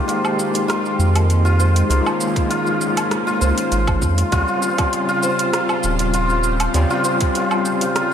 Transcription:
Already playing: analog synth pad D#3 G#3 A#3 G4, tine electric piano G#3 A#3 D#4 G4, santur G4 C5
0.08 santur F4, closed hi-hat, shaker
0.25 low woodblock, shaker
0.39 shaker
0.54 santur F4, closed hi-hat, shaker
0.68 santur F4, cross-stick, closed hi-hat, shaker
0.86 shaker
0.99 analog synth bass F2, shaker
1.16 closed hi-hat, low woodblock, shaker
1.30 closed hi-hat, shaker
1.45 santur F4, shaker
1.59 santur C5, shaker
1.76 closed hi-hat, shaker
1.89 analog synth bass C#2, tine electric piano G#3 A#3 D#4 F4, analog synth pad A#3 C#4 F4, santur F4, closed hi-hat, shaker
2.06 low woodblock, shaker
2.21 shaker
2.36 tine electric piano G#3 A#3 D#4 F4, santur F4, kick, closed hi-hat, shaker
2.50 santur F4, closed hi-hat, shaker
2.67 shaker
2.81 shaker
2.97 closed hi-hat, low woodblock, shaker
3.11 cross-stick, closed hi-hat, shaker
3.27 santur F4, shaker
3.41 analog synth bass C#2, santur C5, shaker
3.58 closed hi-hat, shaker
3.72 analog synth bass G#1, santur F4, closed hi-hat, shaker
3.87 kick, low woodblock, shaker
4.02 analog synth bass F2, kick, shaker
4.18 santur F4, closed hi-hat, shaker
4.32 analog synth bass D#2, analog synth pad C#3 G3 C5, tine electric piano G3 C4 C#4 F4, santur F4, kick, closed hi-hat, shaker
4.48 shaker
4.62 shaker
4.78 tine electric piano G3 C4 C#4 F4, kick, closed hi-hat, low woodblock, shaker
4.93 closed hi-hat, shaker
5.09 santur F4, shaker
5.23 santur C5, shaker
5.39 closed hi-hat, shaker
5.53 santur F4, cross-stick, closed hi-hat, shaker
5.69 low woodblock, shaker
5.84 analog synth bass D#1, shaker
5.99 santur F4, closed hi-hat, shaker
6.14 santur F4, closed hi-hat, shaker
6.30 shaker
6.44 shaker
6.60 closed hi-hat, low woodblock, shaker
6.74 analog synth bass D#2, tine electric piano G3 C4 C#4 F4, closed hi-hat, shaker
6.90 santur F4, shaker
7.05 santur C5, shaker
7.20 tine electric piano G3 C4 C#4 F4, kick, closed hi-hat, shaker
7.35 santur F4, closed hi-hat, shaker
7.51 low woodblock, shaker
7.65 shaker
7.81 santur F4, closed hi-hat, shaker
7.96 santur F4, cross-stick, closed hi-hat, shaker

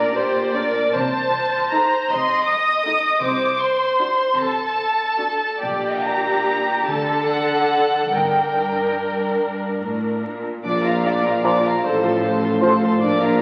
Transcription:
Already playing: cello section A#2, viola section D4 A#4, violin section A#4 D5
0.14 viola section A#3 G4, violin section C5
0.54 viola section D4 A#4, violin section D5
0.95 double bass section C2, cello section C3, violin section C5 A5
1.71 viola section D#4 A4, violin section A#5
2.10 cello section C3, violin section D#5 C6
2.47 violin section D#6
2.85 viola section D#4 A4
3.22 double bass section C2, cello section C3, violin section C5 D6
3.60 violin section C6
3.98 viola section D4 F#4
4.37 cello section C3, violin section A4 A5
5.18 viola section D4 F#4
5.60 double bass section A#1, cello section A#2, viola section D4 G4, violin section G4 D5
6.04 violin section A#5
6.86 double bass section D2, cello section D3, viola section D4 A4, violin section A4 A5
7.28 violin section F#5
8.12 double bass section G1, cello section G2, viola section D4 A#4, violin section A#4 G5
9.40 cello section G2
9.81 cello section A2
10.24 cello section A#2
10.64 tuba A#1, double bass section A#1, cello section A#2, french horn section F3 F4, viola section D4, trumpet D5, violin section D5 D6
10.84 viola section F4, violin section F5 A#5
11.03 viola section D4, violin section D5 D6
11.23 viola section F4, violin section F5 A#5
11.43 bassoon F3, viola section D4, clarinet F4, violin section D5 D6, cor anglais D5, flute A#5
11.62 viola section F4, violin section F5 A#5
11.83 double bass section A1, tuba A1, cello section A2, viola section A4, trumpet C5, violin section C5 A5
12.02 viola section F4, violin section A4 C6
12.21 viola section A4, violin section C5 A5
12.41 viola section F4, violin section A4 C6
12.60 bassoon F3, clarinet F4, viola section A4, violin section C5 A5, cor anglais C5, flute C6
12.80 viola section F4, violin section A4 C6
13.00 tuba A#1, double bass section A#1, cello section A#2, viola section D4, french horn section D4, trumpet A#4, violin section D5 D6
13.20 viola section F4, violin section F5 A#5

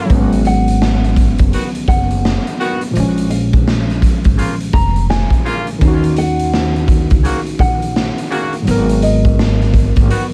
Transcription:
Already playing: horn section D#3 B3 F#4
0.06 tine electric piano F#3
0.10 upright bass G#1, tine electric piano B3, kick, closed hi-hat
0.15 tine electric piano C#4
0.32 closed hi-hat
0.45 nylon-string guitar F#5, closed hi-hat
0.68 closed hi-hat
0.82 snare
1.04 closed hi-hat
1.16 kick, closed hi-hat
1.38 upright bass F#1, kick, closed hi-hat
1.53 horn section D#3 B3 F#4, snare, closed hi-hat
1.75 closed hi-hat
1.88 upright bass F#1, nylon-string guitar F#5, kick, closed hi-hat
2.10 closed hi-hat
2.25 snare
2.47 closed hi-hat
2.59 horn section D#3 B3 F#4, closed hi-hat
2.81 closed hi-hat
2.91 tine electric piano A#2 F3
2.95 upright bass A#1, tine electric piano G#3, closed hi-hat
3.00 tine electric piano C#4
3.18 closed hi-hat
3.30 nylon-string guitar F5, closed hi-hat
3.53 kick, closed hi-hat
3.68 snare
3.90 snare, closed hi-hat
4.02 kick, closed hi-hat
4.24 upright bass G#1, kick, closed hi-hat
4.38 horn section C#3 A#3 F4, closed hi-hat
4.60 closed hi-hat
4.73 upright bass F1, nylon-string guitar A#5, kick, closed hi-hat
4.96 closed hi-hat
5.10 nylon-string guitar G#5, snare
5.30 kick, closed hi-hat
5.45 horn section C#3 A#3 F4, closed hi-hat
5.67 closed hi-hat
5.78 upright bass D#2, tine electric piano D#3 C#4, kick, closed hi-hat
5.85 tine electric piano D#4 F#4
6.04 closed hi-hat
6.16 nylon-string guitar F#5, closed hi-hat
6.39 closed hi-hat
6.54 snare
6.76 closed hi-hat
6.88 kick, closed hi-hat
7.10 upright bass C#2, kick, closed hi-hat
7.24 horn section C#3 A#3 F#4, snare, closed hi-hat
7.46 closed hi-hat
7.59 upright bass A#1, nylon-string guitar F#5, kick, closed hi-hat
7.82 closed hi-hat
7.96 snare
8.18 closed hi-hat
8.31 horn section C#3 A#3 F#4, closed hi-hat
8.53 closed hi-hat
8.62 tine electric piano G#2 F#3
8.67 upright bass G#1, tine electric piano B3 A#4, closed hi-hat
8.89 closed hi-hat
9.02 nylon-string guitar D#5, closed hi-hat
9.25 kick, closed hi-hat
9.39 snare
9.61 snare, closed hi-hat
9.74 kick, closed hi-hat
9.96 upright bass G#1, kick, closed hi-hat
10.10 horn section D#3 B3 F#4, closed hi-hat

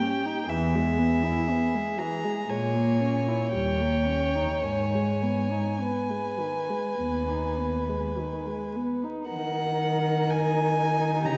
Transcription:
Already playing: violin G4 G5
0.01 viola C#4
0.26 viola D#4
0.49 cello E2, viola E3, violin G#4 E5
0.75 viola G#3
0.98 viola B3
1.24 viola E4
1.50 viola B3
1.74 viola G#3
1.98 viola E3, violin A#5
2.24 viola G#3
2.49 cello A#2, viola G#3, violin C#5 G#5
2.75 viola A#3
3.01 viola C#4
3.28 viola E4
3.53 cello D#2, viola G3, violin G5
3.80 viola A#3
4.07 viola C#4
4.36 viola D#4
4.63 cello G#2, viola D#3, violin G#5
4.94 viola G#3
5.23 viola B3
5.51 viola D#4
5.81 viola B3, violin B4
6.10 viola G#3
6.39 viola D#3
6.70 viola G#3
7.00 cello D#2, viola B3
7.30 viola D#4
7.60 viola B3
7.89 viola G#3
8.18 viola D#3
8.46 viola G#3
8.76 viola B3
9.04 viola D#4
9.28 cello D#3, viola D#4, violin A#4 F#5
10.30 violin G#5
11.23 cello C#3, violin G4 A#5

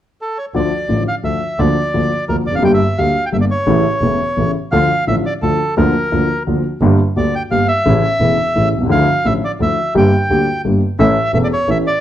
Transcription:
0.21 bandoneon A4
0.38 bandoneon C#5
0.54 double bass D2, grand piano D2 D3 F3 A3 F4, bandoneon D5
0.89 grand piano A1 A2 D3 F3 A3 F4, double bass A1
1.08 bandoneon F5
1.23 grand piano D2 D3 F3 A3 F4, double bass D2, bandoneon E5
1.59 double bass D2, grand piano D2 D3 F3 A#3 F4, bandoneon D5
1.94 grand piano D2 D3 F3 A#3 F4, double bass D2
2.29 grand piano D2 D3 F3 A#3 F4, double bass D2, bandoneon A#4
2.47 double bass F1, bandoneon D5
2.51 grand piano E2 F2
2.55 grand piano F#2, bandoneon F5
2.62 grand piano G1 G2 D3 G3 A#3 G4, double bass G1, bandoneon G5
2.74 bandoneon E5
2.98 grand piano D2 D3 G3 A#3 G4, double bass D2, bandoneon F5
3.26 bandoneon G5
3.32 grand piano G1 G2 D3 G3 A#3 G4, double bass G1, bandoneon E5
3.41 bandoneon D5
3.51 bandoneon C#5
3.67 grand piano A1 A2 C#3 E3 A3 E4, double bass A1
4.02 double bass E1, grand piano E1 E2 C#3 E3 A3 E4
4.37 grand piano A1 A2 C#3 E3 A3 E4, double bass A1
4.72 double bass D2, grand piano D2 D3 F3 A3 F4, bandoneon F5
5.07 grand piano A1 A2 D3 F3 A3 F4, double bass A1, bandoneon E5
5.26 bandoneon D5
5.42 grand piano D2 D3 F3 A3 F4, double bass D2, bandoneon A4
5.77 grand piano D2 D3 F3 A#3 F4, double bass D2, bandoneon A#4
6.12 grand piano D2 D3 F3 A#3 F4, double bass D2
6.47 grand piano D2 D3 F3 A#3 F4, double bass D2
6.81 double bass G1, grand piano G1 G2 D3 G3 A#3 G4
7.16 double bass D2, grand piano D2 D3 G3 A#3 G4, bandoneon D5
7.35 bandoneon G5
7.51 grand piano G1 G2 D3 G3 A#3 G4, double bass G1, bandoneon F5
7.68 bandoneon E5
7.85 double bass A1, grand piano A1 A2 C#3 E3 A3 E4
8.20 double bass E1, grand piano E1 E2 C#3 E3 A3 E4
8.55 double bass A1, grand piano A1 A2 C#3 E3 A3 E4
8.73 grand piano B1, double bass C2
8.81 grand piano C2
8.86 grand piano C#2 D2 D3 F3
8.90 double bass D2, grand piano A3 E4, bandoneon F5
9.25 grand piano A1 A2 D3 F3 A3 E4, double bass A1, bandoneon E5
9.44 bandoneon D5
9.60 double bass D2, grand piano D2 D3 F3 A3 E4, bandoneon E5
9.95 grand piano G1 G2 D3 G3 A#3 G4, double bass G1, bandoneon G5
10.30 double bass D2, grand piano D2 D3 G3 A#3 G4
10.64 grand piano G1 G2 D3 G3 A#3 G4, double bass G1
10.99 grand piano A1 A2 E3 A3 C#4 A4, double bass A1, bandoneon E5
11.33 grand piano E1 E2 E3 A3 C#4 A4, double bass E1, bandoneon E5
11.44 bandoneon D5
11.53 bandoneon C#5
11.68 double bass A1, grand piano A1 A2 E3 A3 C#4 A4, bandoneon E5
11.87 bandoneon D5

